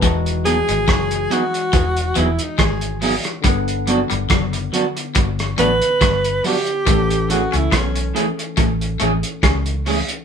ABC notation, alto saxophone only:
X:1
M:4/4
L:1/16
Q:"Swing 16ths" 1/4=70
K:E
V:1 name="Alto saxophone"
z2 G4 F4 E D G2 z2 | z8 z2 B4 =G2- | =G2 F E C2 z8 z2 |]